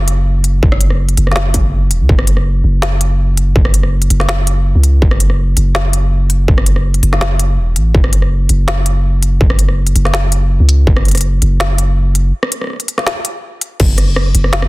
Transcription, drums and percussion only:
0.08 closed hi-hat
0.44 closed hi-hat
0.63 kick
0.72 cross-stick
0.81 closed hi-hat
0.90 cross-stick
1.09 closed hi-hat
1.17 closed hi-hat
1.27 cross-stick
1.32 snare
1.36 snare
1.54 kick, closed hi-hat
1.91 closed hi-hat
2.09 kick
2.19 cross-stick
2.27 closed hi-hat
2.37 cross-stick
2.82 snare
3.01 closed hi-hat
3.37 closed hi-hat
3.56 kick
3.65 cross-stick
3.74 closed hi-hat
3.83 cross-stick
4.02 closed hi-hat
4.10 closed hi-hat
4.20 cross-stick, snare
4.29 snare
4.47 closed hi-hat
4.83 closed hi-hat
5.02 kick
5.11 cross-stick
5.20 closed hi-hat
5.30 cross-stick
5.57 closed hi-hat
5.75 snare
5.93 closed hi-hat
6.30 closed hi-hat
6.48 kick
6.58 cross-stick
6.66 closed hi-hat
6.76 cross-stick
6.94 closed hi-hat
7.03 closed hi-hat
7.13 cross-stick, snare
7.21 snare
7.39 closed hi-hat
7.76 closed hi-hat
7.95 kick
8.04 cross-stick
8.13 closed hi-hat
8.22 cross-stick
8.49 closed hi-hat
8.68 snare
8.86 closed hi-hat
9.23 closed hi-hat
9.41 kick
9.50 cross-stick
9.59 closed hi-hat
9.69 cross-stick
9.87 closed hi-hat
9.96 closed hi-hat
10.05 cross-stick, snare
10.14 snare
10.32 closed hi-hat
10.69 closed hi-hat
10.87 kick
10.97 cross-stick
11.05 closed hi-hat
11.08 closed hi-hat
11.11 cross-stick, closed hi-hat
11.15 closed hi-hat
11.17 closed hi-hat
11.21 closed hi-hat
11.42 closed hi-hat
11.60 snare
11.78 closed hi-hat
12.15 closed hi-hat
12.43 cross-stick
12.52 closed hi-hat
12.61 cross-stick
12.64 cross-stick
12.67 cross-stick
12.70 cross-stick
12.73 cross-stick
12.76 cross-stick, closed hi-hat
12.88 closed hi-hat
12.98 cross-stick, snare
13.07 snare
13.25 closed hi-hat
13.61 closed hi-hat
13.80 kick, crash
13.98 cross-stick, closed hi-hat
14.16 cross-stick
14.35 closed hi-hat
14.44 cross-stick
14.53 snare
14.62 cross-stick

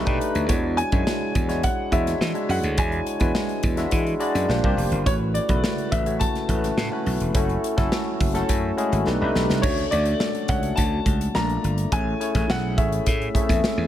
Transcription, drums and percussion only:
0.06 kick, closed hi-hat
0.21 closed hi-hat
0.35 closed hi-hat
0.49 kick, closed hi-hat
0.78 closed hi-hat
0.92 kick, closed hi-hat
1.07 snare
1.35 kick, closed hi-hat
1.49 snare, closed hi-hat
1.63 kick, closed hi-hat
1.92 kick, closed hi-hat
2.07 snare, closed hi-hat
2.21 snare
2.35 closed hi-hat
2.50 open hi-hat
2.63 closed hi-hat
2.78 kick, closed hi-hat
2.92 closed hi-hat
3.07 closed hi-hat
3.20 kick, closed hi-hat
3.35 snare
3.49 closed hi-hat
3.63 kick, closed hi-hat
3.77 snare, closed hi-hat
3.91 kick, closed hi-hat
4.06 closed hi-hat
4.20 closed hi-hat
4.35 snare, closed hi-hat
4.50 snare
4.64 kick
4.78 open hi-hat
4.92 closed hi-hat
5.06 kick, closed hi-hat
5.35 closed hi-hat
5.49 kick, closed hi-hat
5.64 snare
5.78 closed hi-hat
5.92 kick, closed hi-hat
6.06 closed hi-hat
6.21 kick, closed hi-hat
6.35 snare, closed hi-hat
6.49 kick, closed hi-hat
6.64 snare, closed hi-hat
6.78 snare
7.06 open hi-hat
7.20 closed hi-hat
7.35 kick, closed hi-hat
7.49 closed hi-hat
7.64 closed hi-hat
7.78 kick, snare, closed hi-hat
7.92 snare
8.20 kick, open hi-hat
8.35 snare, closed hi-hat
8.49 kick, closed hi-hat
8.78 closed hi-hat
8.93 closed hi-hat
9.07 snare
9.35 snare
9.50 snare
9.63 kick, crash
9.78 closed hi-hat
9.92 closed hi-hat
10.05 closed hi-hat
10.20 snare
10.35 closed hi-hat
10.48 kick, closed hi-hat
10.63 closed hi-hat
10.77 kick, closed hi-hat
11.06 kick, closed hi-hat
11.21 closed hi-hat
11.35 snare
11.50 closed hi-hat
11.64 closed hi-hat
11.78 closed hi-hat
11.92 kick, closed hi-hat
12.21 closed hi-hat
12.35 kick, snare, closed hi-hat
12.50 snare
12.78 kick, closed hi-hat
12.92 closed hi-hat
13.06 kick, closed hi-hat
13.22 closed hi-hat
13.35 kick, closed hi-hat
13.49 kick, snare, closed hi-hat
13.64 snare

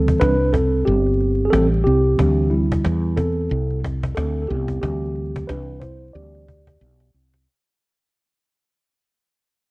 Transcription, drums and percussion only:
0.08 cajon bass
0.21 cajon slap
0.54 cajon bass
0.86 cajon slap
1.06 cajon slap
1.20 cajon slap
1.53 cajon slap
1.72 cajon slap
1.86 cajon slap
2.04 cajon slap
2.19 cajon bass
2.51 cajon slap
2.72 cajon bass
2.85 cajon slap
3.17 cajon bass
3.50 cajon slap
3.71 cajon slap
3.84 cajon bass
4.03 cajon bass
4.17 cajon slap
4.36 cajon slap
4.50 cajon slap
4.68 cajon bass
4.83 cajon bass
5.16 cajon slap
5.36 cajon bass
5.49 cajon slap
5.82 cajon bass
6.14 cajon slap
6.35 cajon slap
6.48 cajon bass
6.67 cajon bass
6.81 cajon slap
7.00 cajon slap
7.34 cajon slap

